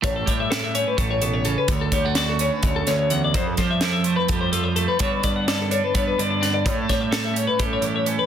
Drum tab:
HH |xxxxxxx|xxxxxxx|xxxxxxx|xxxxxxx|
SD |--o----|--o--o-|-oo----|--o---o|
BD |oo--o--|oo--o--|oo--o--|oo--o--|

HH |xxxxxxx|
SD |-oo----|
BD |oo--o--|